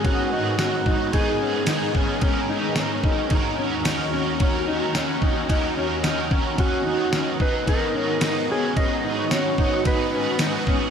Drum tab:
RD |x-x-x-x-|x-x-x-x-|x-x-x-x-|x-x-x-x-|
TB |--x---x-|--x---x-|--x---x-|--x---x-|
SD |--o---o-|--o---o-|--o---o-|--o---o-|
BD |o--oo--o|o--oo---|o--oo--o|o--oo---|

RD |x-x-x-x-|
TB |--x---x-|
SD |--o---o-|
BD |o--oo--o|